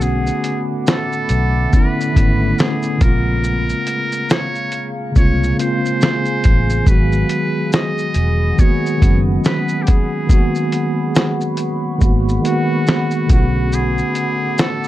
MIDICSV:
0, 0, Header, 1, 6, 480
1, 0, Start_track
1, 0, Key_signature, 5, "minor"
1, 0, Tempo, 857143
1, 7, Time_signature, 4, 2, 24, 8
1, 8332, End_track
2, 0, Start_track
2, 0, Title_t, "Ambient pad"
2, 0, Program_c, 0, 92
2, 0, Note_on_c, 0, 57, 85
2, 0, Note_on_c, 0, 78, 72
2, 0, Note_on_c, 0, 83, 74
2, 0, Note_on_c, 0, 86, 84
2, 1666, Note_off_c, 0, 78, 0
2, 1668, Note_off_c, 0, 57, 0
2, 1668, Note_off_c, 0, 83, 0
2, 1668, Note_off_c, 0, 86, 0
2, 1687, Note_on_c, 0, 77, 79
2, 1687, Note_on_c, 0, 82, 75
2, 1689, Note_on_c, 0, 68, 81
2, 2638, Note_off_c, 0, 82, 0
2, 2646, Note_on_c, 0, 80, 74
2, 3826, Note_off_c, 0, 77, 0
2, 3835, Note_off_c, 0, 80, 0
2, 3846, Note_on_c, 0, 78, 70
2, 3847, Note_on_c, 0, 83, 74
2, 3847, Note_on_c, 0, 87, 86
2, 5748, Note_off_c, 0, 87, 0
2, 5765, Note_on_c, 0, 85, 92
2, 7425, Note_off_c, 0, 68, 0
2, 7429, Note_off_c, 0, 85, 0
2, 7446, Note_on_c, 0, 57, 83
2, 7447, Note_on_c, 0, 86, 95
2, 8332, Note_off_c, 0, 57, 0
2, 8332, Note_off_c, 0, 78, 0
2, 8332, Note_off_c, 0, 83, 0
2, 8332, Note_off_c, 0, 86, 0
2, 8332, End_track
3, 0, Start_track
3, 0, Title_t, "Muted trumpet"
3, 0, Program_c, 1, 59
3, 14, Note_on_c, 1, 68, 90
3, 358, Note_off_c, 1, 68, 0
3, 495, Note_on_c, 1, 69, 97
3, 974, Note_on_c, 1, 71, 94
3, 983, Note_off_c, 1, 69, 0
3, 1455, Note_on_c, 1, 68, 88
3, 1463, Note_off_c, 1, 71, 0
3, 1694, Note_on_c, 1, 70, 105
3, 1702, Note_off_c, 1, 68, 0
3, 2415, Note_on_c, 1, 73, 107
3, 2423, Note_off_c, 1, 70, 0
3, 2758, Note_off_c, 1, 73, 0
3, 2896, Note_on_c, 1, 73, 99
3, 3115, Note_off_c, 1, 73, 0
3, 3135, Note_on_c, 1, 72, 104
3, 3856, Note_on_c, 1, 71, 97
3, 3865, Note_off_c, 1, 72, 0
3, 4330, Note_off_c, 1, 71, 0
3, 4334, Note_on_c, 1, 75, 107
3, 4816, Note_on_c, 1, 73, 98
3, 4824, Note_off_c, 1, 75, 0
3, 5159, Note_off_c, 1, 73, 0
3, 5295, Note_on_c, 1, 71, 90
3, 5502, Note_on_c, 1, 67, 60
3, 5510, Note_off_c, 1, 71, 0
3, 5536, Note_on_c, 1, 68, 89
3, 5545, Note_off_c, 1, 67, 0
3, 6492, Note_off_c, 1, 68, 0
3, 6978, Note_on_c, 1, 66, 91
3, 7430, Note_off_c, 1, 66, 0
3, 7457, Note_on_c, 1, 66, 87
3, 7697, Note_on_c, 1, 68, 105
3, 7705, Note_off_c, 1, 66, 0
3, 8176, Note_on_c, 1, 69, 97
3, 8184, Note_off_c, 1, 68, 0
3, 8332, Note_off_c, 1, 69, 0
3, 8332, End_track
4, 0, Start_track
4, 0, Title_t, "Tine electric piano"
4, 0, Program_c, 2, 4
4, 0, Control_c, 2, 64, 127
4, 0, Note_on_c, 2, 50, 70
4, 0, Note_on_c, 2, 57, 67
4, 0, Note_on_c, 2, 59, 64
4, 0, Note_on_c, 2, 61, 64
4, 0, Note_on_c, 2, 66, 74
4, 535, Note_off_c, 2, 50, 0
4, 540, Note_off_c, 2, 57, 0
4, 546, Note_off_c, 2, 59, 0
4, 550, Note_off_c, 2, 61, 0
4, 555, Note_off_c, 2, 66, 0
4, 950, Note_on_c, 2, 50, 67
4, 959, Note_on_c, 2, 57, 57
4, 969, Note_on_c, 2, 59, 60
4, 979, Note_on_c, 2, 61, 61
4, 989, Note_on_c, 2, 64, 75
4, 1134, Note_off_c, 2, 50, 0
4, 1138, Note_off_c, 2, 57, 0
4, 1143, Note_off_c, 2, 59, 0
4, 1148, Note_off_c, 2, 61, 0
4, 1153, Note_off_c, 2, 64, 0
4, 1191, Note_on_c, 2, 50, 70
4, 1200, Note_on_c, 2, 57, 64
4, 1210, Note_on_c, 2, 59, 60
4, 1220, Note_on_c, 2, 61, 66
4, 1228, Note_on_c, 2, 64, 77
4, 1669, Note_on_c, 2, 49, 69
4, 1675, Note_off_c, 2, 50, 0
4, 1679, Note_off_c, 2, 57, 0
4, 1681, Note_on_c, 2, 56, 65
4, 1684, Note_off_c, 2, 59, 0
4, 1689, Note_off_c, 2, 61, 0
4, 1690, Note_on_c, 2, 58, 63
4, 1693, Note_off_c, 2, 64, 0
4, 1694, Control_c, 2, 64, 0
4, 1700, Note_on_c, 2, 60, 66
4, 1709, Note_on_c, 2, 65, 79
4, 1793, Control_c, 2, 64, 127
4, 2456, Note_off_c, 2, 49, 0
4, 2462, Note_off_c, 2, 56, 0
4, 2466, Note_off_c, 2, 58, 0
4, 2472, Note_off_c, 2, 60, 0
4, 2476, Note_off_c, 2, 65, 0
4, 2866, Note_on_c, 2, 49, 63
4, 2876, Note_on_c, 2, 56, 61
4, 2885, Note_on_c, 2, 58, 59
4, 2896, Note_on_c, 2, 60, 60
4, 2906, Note_on_c, 2, 65, 72
4, 3052, Note_off_c, 2, 49, 0
4, 3057, Note_off_c, 2, 56, 0
4, 3061, Note_off_c, 2, 58, 0
4, 3067, Note_off_c, 2, 60, 0
4, 3072, Note_off_c, 2, 65, 0
4, 3109, Note_on_c, 2, 49, 73
4, 3117, Note_on_c, 2, 56, 61
4, 3127, Note_on_c, 2, 58, 66
4, 3137, Note_on_c, 2, 60, 63
4, 3146, Note_on_c, 2, 65, 74
4, 3593, Note_off_c, 2, 49, 0
4, 3597, Note_off_c, 2, 56, 0
4, 3602, Note_off_c, 2, 58, 0
4, 3608, Note_off_c, 2, 60, 0
4, 3612, Note_off_c, 2, 65, 0
4, 3826, Note_on_c, 2, 51, 73
4, 3837, Note_on_c, 2, 56, 64
4, 3846, Note_on_c, 2, 54, 66
4, 3856, Control_c, 2, 64, 0
4, 3856, Note_on_c, 2, 59, 70
4, 3865, Note_on_c, 2, 66, 80
4, 3946, Control_c, 2, 64, 127
4, 4487, Note_off_c, 2, 51, 0
4, 4493, Note_off_c, 2, 56, 0
4, 4497, Note_off_c, 2, 54, 0
4, 4502, Note_off_c, 2, 59, 0
4, 4506, Note_off_c, 2, 66, 0
4, 4788, Note_on_c, 2, 51, 65
4, 4797, Note_on_c, 2, 56, 58
4, 4807, Note_on_c, 2, 58, 58
4, 4816, Note_on_c, 2, 59, 58
4, 4825, Note_on_c, 2, 66, 70
4, 4973, Note_off_c, 2, 51, 0
4, 4977, Note_off_c, 2, 56, 0
4, 4982, Note_off_c, 2, 58, 0
4, 4987, Note_off_c, 2, 59, 0
4, 4991, Note_off_c, 2, 66, 0
4, 5026, Note_on_c, 2, 51, 69
4, 5038, Note_on_c, 2, 56, 61
4, 5047, Note_on_c, 2, 54, 63
4, 5057, Note_on_c, 2, 59, 62
4, 5066, Note_on_c, 2, 61, 76
4, 5512, Note_off_c, 2, 51, 0
4, 5518, Note_off_c, 2, 56, 0
4, 5523, Note_off_c, 2, 54, 0
4, 5528, Note_off_c, 2, 59, 0
4, 5532, Note_off_c, 2, 61, 0
4, 5749, Note_on_c, 2, 51, 73
4, 5759, Note_on_c, 2, 56, 68
4, 5769, Note_on_c, 2, 58, 69
4, 5778, Note_on_c, 2, 59, 69
4, 5788, Note_on_c, 2, 66, 81
4, 6409, Note_off_c, 2, 51, 0
4, 6414, Note_off_c, 2, 56, 0
4, 6419, Note_off_c, 2, 58, 0
4, 6423, Note_off_c, 2, 59, 0
4, 6428, Note_off_c, 2, 66, 0
4, 6708, Note_on_c, 2, 51, 78
4, 6718, Note_on_c, 2, 56, 69
4, 6728, Note_on_c, 2, 58, 73
4, 6737, Note_on_c, 2, 59, 75
4, 6747, Note_on_c, 2, 66, 82
4, 6893, Note_off_c, 2, 51, 0
4, 6898, Note_off_c, 2, 56, 0
4, 6903, Note_off_c, 2, 58, 0
4, 6907, Note_off_c, 2, 59, 0
4, 6912, Note_off_c, 2, 66, 0
4, 6948, Note_on_c, 2, 51, 68
4, 6957, Note_on_c, 2, 56, 60
4, 6968, Note_on_c, 2, 58, 64
4, 6977, Note_on_c, 2, 59, 61
4, 6987, Note_on_c, 2, 66, 79
4, 7426, Note_on_c, 2, 50, 75
4, 7433, Note_off_c, 2, 51, 0
4, 7435, Note_on_c, 2, 57, 67
4, 7438, Note_off_c, 2, 56, 0
4, 7438, Note_off_c, 2, 59, 0
4, 7443, Note_off_c, 2, 58, 0
4, 7445, Note_on_c, 2, 59, 66
4, 7452, Note_off_c, 2, 66, 0
4, 7455, Control_c, 2, 64, 0
4, 7455, Note_on_c, 2, 61, 61
4, 7465, Note_on_c, 2, 65, 63
4, 7500, Note_off_c, 2, 65, 0
4, 7502, Note_on_c, 2, 66, 82
4, 7564, Control_c, 2, 64, 127
4, 8214, Note_off_c, 2, 50, 0
4, 8219, Note_off_c, 2, 57, 0
4, 8224, Note_off_c, 2, 59, 0
4, 8229, Note_off_c, 2, 61, 0
4, 8253, Note_off_c, 2, 66, 0
4, 8332, End_track
5, 0, Start_track
5, 0, Title_t, "Fingered electric bass"
5, 0, Program_c, 3, 33
5, 0, Note_on_c, 3, 35, 80
5, 164, Note_off_c, 3, 35, 0
5, 729, Note_on_c, 3, 35, 88
5, 927, Note_off_c, 3, 35, 0
5, 1212, Note_on_c, 3, 32, 84
5, 1409, Note_off_c, 3, 32, 0
5, 1688, Note_on_c, 3, 34, 85
5, 2085, Note_off_c, 3, 34, 0
5, 2890, Note_on_c, 3, 36, 86
5, 3088, Note_off_c, 3, 36, 0
5, 3615, Note_on_c, 3, 33, 82
5, 3811, Note_off_c, 3, 33, 0
5, 3845, Note_on_c, 3, 32, 108
5, 4045, Note_off_c, 3, 32, 0
5, 4568, Note_on_c, 3, 28, 81
5, 4766, Note_off_c, 3, 28, 0
5, 5052, Note_on_c, 3, 30, 82
5, 5248, Note_off_c, 3, 30, 0
5, 6730, Note_on_c, 3, 32, 88
5, 6927, Note_off_c, 3, 32, 0
5, 7448, Note_on_c, 3, 35, 80
5, 7845, Note_off_c, 3, 35, 0
5, 8332, End_track
6, 0, Start_track
6, 0, Title_t, "Drums"
6, 7, Note_on_c, 9, 82, 74
6, 63, Note_off_c, 9, 82, 0
6, 149, Note_on_c, 9, 82, 45
6, 205, Note_off_c, 9, 82, 0
6, 246, Note_on_c, 9, 42, 60
6, 246, Note_on_c, 9, 82, 45
6, 302, Note_off_c, 9, 42, 0
6, 302, Note_off_c, 9, 82, 0
6, 485, Note_on_c, 9, 82, 65
6, 493, Note_on_c, 9, 38, 107
6, 541, Note_off_c, 9, 82, 0
6, 549, Note_off_c, 9, 38, 0
6, 630, Note_on_c, 9, 82, 38
6, 686, Note_off_c, 9, 82, 0
6, 722, Note_on_c, 9, 42, 60
6, 722, Note_on_c, 9, 82, 44
6, 778, Note_off_c, 9, 42, 0
6, 778, Note_off_c, 9, 82, 0
6, 968, Note_on_c, 9, 82, 58
6, 970, Note_on_c, 9, 36, 78
6, 1024, Note_off_c, 9, 82, 0
6, 1026, Note_off_c, 9, 36, 0
6, 1124, Note_on_c, 9, 82, 44
6, 1180, Note_off_c, 9, 82, 0
6, 1212, Note_on_c, 9, 36, 93
6, 1214, Note_on_c, 9, 42, 67
6, 1214, Note_on_c, 9, 82, 50
6, 1268, Note_off_c, 9, 36, 0
6, 1270, Note_off_c, 9, 42, 0
6, 1270, Note_off_c, 9, 82, 0
6, 1447, Note_on_c, 9, 82, 56
6, 1457, Note_on_c, 9, 38, 103
6, 1503, Note_off_c, 9, 82, 0
6, 1513, Note_off_c, 9, 38, 0
6, 1581, Note_on_c, 9, 82, 43
6, 1637, Note_off_c, 9, 82, 0
6, 1685, Note_on_c, 9, 42, 73
6, 1685, Note_on_c, 9, 82, 53
6, 1687, Note_on_c, 9, 36, 97
6, 1741, Note_off_c, 9, 42, 0
6, 1741, Note_off_c, 9, 82, 0
6, 1743, Note_off_c, 9, 36, 0
6, 1926, Note_on_c, 9, 82, 75
6, 1982, Note_off_c, 9, 82, 0
6, 2068, Note_on_c, 9, 82, 43
6, 2124, Note_off_c, 9, 82, 0
6, 2166, Note_on_c, 9, 42, 63
6, 2166, Note_on_c, 9, 82, 45
6, 2222, Note_off_c, 9, 42, 0
6, 2222, Note_off_c, 9, 82, 0
6, 2308, Note_on_c, 9, 82, 53
6, 2364, Note_off_c, 9, 82, 0
6, 2406, Note_on_c, 9, 82, 66
6, 2413, Note_on_c, 9, 38, 111
6, 2462, Note_off_c, 9, 82, 0
6, 2469, Note_off_c, 9, 38, 0
6, 2550, Note_on_c, 9, 82, 36
6, 2606, Note_off_c, 9, 82, 0
6, 2642, Note_on_c, 9, 42, 58
6, 2642, Note_on_c, 9, 82, 41
6, 2698, Note_off_c, 9, 42, 0
6, 2698, Note_off_c, 9, 82, 0
6, 2887, Note_on_c, 9, 82, 59
6, 2890, Note_on_c, 9, 36, 82
6, 2943, Note_off_c, 9, 82, 0
6, 2946, Note_off_c, 9, 36, 0
6, 3043, Note_on_c, 9, 82, 48
6, 3099, Note_off_c, 9, 82, 0
6, 3133, Note_on_c, 9, 42, 64
6, 3133, Note_on_c, 9, 82, 47
6, 3189, Note_off_c, 9, 42, 0
6, 3189, Note_off_c, 9, 82, 0
6, 3278, Note_on_c, 9, 82, 45
6, 3334, Note_off_c, 9, 82, 0
6, 3367, Note_on_c, 9, 82, 58
6, 3377, Note_on_c, 9, 38, 96
6, 3423, Note_off_c, 9, 82, 0
6, 3433, Note_off_c, 9, 38, 0
6, 3502, Note_on_c, 9, 82, 42
6, 3558, Note_off_c, 9, 82, 0
6, 3605, Note_on_c, 9, 42, 70
6, 3605, Note_on_c, 9, 82, 49
6, 3614, Note_on_c, 9, 36, 84
6, 3661, Note_off_c, 9, 42, 0
6, 3661, Note_off_c, 9, 82, 0
6, 3670, Note_off_c, 9, 36, 0
6, 3750, Note_on_c, 9, 82, 49
6, 3806, Note_off_c, 9, 82, 0
6, 3845, Note_on_c, 9, 36, 118
6, 3845, Note_on_c, 9, 82, 73
6, 3901, Note_off_c, 9, 36, 0
6, 3901, Note_off_c, 9, 82, 0
6, 3989, Note_on_c, 9, 82, 44
6, 4045, Note_off_c, 9, 82, 0
6, 4085, Note_on_c, 9, 42, 63
6, 4085, Note_on_c, 9, 82, 45
6, 4141, Note_off_c, 9, 42, 0
6, 4141, Note_off_c, 9, 82, 0
6, 4325, Note_on_c, 9, 82, 69
6, 4333, Note_on_c, 9, 38, 108
6, 4381, Note_off_c, 9, 82, 0
6, 4389, Note_off_c, 9, 38, 0
6, 4469, Note_on_c, 9, 82, 37
6, 4525, Note_off_c, 9, 82, 0
6, 4561, Note_on_c, 9, 42, 59
6, 4561, Note_on_c, 9, 82, 43
6, 4617, Note_off_c, 9, 42, 0
6, 4617, Note_off_c, 9, 82, 0
6, 4807, Note_on_c, 9, 82, 58
6, 4810, Note_on_c, 9, 36, 78
6, 4863, Note_off_c, 9, 82, 0
6, 4866, Note_off_c, 9, 36, 0
6, 4963, Note_on_c, 9, 82, 44
6, 5019, Note_off_c, 9, 82, 0
6, 5051, Note_on_c, 9, 36, 97
6, 5053, Note_on_c, 9, 42, 67
6, 5053, Note_on_c, 9, 82, 49
6, 5107, Note_off_c, 9, 36, 0
6, 5109, Note_off_c, 9, 42, 0
6, 5109, Note_off_c, 9, 82, 0
6, 5287, Note_on_c, 9, 82, 58
6, 5297, Note_on_c, 9, 38, 107
6, 5343, Note_off_c, 9, 82, 0
6, 5353, Note_off_c, 9, 38, 0
6, 5423, Note_on_c, 9, 82, 44
6, 5479, Note_off_c, 9, 82, 0
6, 5527, Note_on_c, 9, 42, 70
6, 5527, Note_on_c, 9, 82, 54
6, 5535, Note_on_c, 9, 36, 91
6, 5583, Note_off_c, 9, 42, 0
6, 5583, Note_off_c, 9, 82, 0
6, 5591, Note_off_c, 9, 36, 0
6, 5765, Note_on_c, 9, 36, 114
6, 5766, Note_on_c, 9, 82, 76
6, 5821, Note_off_c, 9, 36, 0
6, 5822, Note_off_c, 9, 82, 0
6, 5908, Note_on_c, 9, 82, 41
6, 5964, Note_off_c, 9, 82, 0
6, 6005, Note_on_c, 9, 42, 59
6, 6005, Note_on_c, 9, 82, 41
6, 6061, Note_off_c, 9, 42, 0
6, 6061, Note_off_c, 9, 82, 0
6, 6244, Note_on_c, 9, 82, 70
6, 6252, Note_on_c, 9, 38, 119
6, 6300, Note_off_c, 9, 82, 0
6, 6308, Note_off_c, 9, 38, 0
6, 6389, Note_on_c, 9, 82, 39
6, 6445, Note_off_c, 9, 82, 0
6, 6480, Note_on_c, 9, 42, 59
6, 6480, Note_on_c, 9, 82, 43
6, 6536, Note_off_c, 9, 42, 0
6, 6536, Note_off_c, 9, 82, 0
6, 6726, Note_on_c, 9, 82, 59
6, 6729, Note_on_c, 9, 36, 81
6, 6782, Note_off_c, 9, 82, 0
6, 6785, Note_off_c, 9, 36, 0
6, 6882, Note_on_c, 9, 82, 49
6, 6938, Note_off_c, 9, 82, 0
6, 6971, Note_on_c, 9, 42, 68
6, 6971, Note_on_c, 9, 82, 46
6, 7027, Note_off_c, 9, 42, 0
6, 7027, Note_off_c, 9, 82, 0
6, 7206, Note_on_c, 9, 82, 59
6, 7216, Note_on_c, 9, 38, 105
6, 7262, Note_off_c, 9, 82, 0
6, 7272, Note_off_c, 9, 38, 0
6, 7341, Note_on_c, 9, 82, 43
6, 7397, Note_off_c, 9, 82, 0
6, 7445, Note_on_c, 9, 42, 68
6, 7445, Note_on_c, 9, 82, 51
6, 7447, Note_on_c, 9, 36, 106
6, 7501, Note_off_c, 9, 42, 0
6, 7501, Note_off_c, 9, 82, 0
6, 7503, Note_off_c, 9, 36, 0
6, 7686, Note_on_c, 9, 82, 75
6, 7742, Note_off_c, 9, 82, 0
6, 7829, Note_on_c, 9, 82, 42
6, 7885, Note_off_c, 9, 82, 0
6, 7925, Note_on_c, 9, 42, 58
6, 7925, Note_on_c, 9, 82, 45
6, 7981, Note_off_c, 9, 42, 0
6, 7981, Note_off_c, 9, 82, 0
6, 8165, Note_on_c, 9, 82, 70
6, 8172, Note_on_c, 9, 38, 118
6, 8221, Note_off_c, 9, 82, 0
6, 8228, Note_off_c, 9, 38, 0
6, 8309, Note_on_c, 9, 82, 37
6, 8332, Note_off_c, 9, 82, 0
6, 8332, End_track
0, 0, End_of_file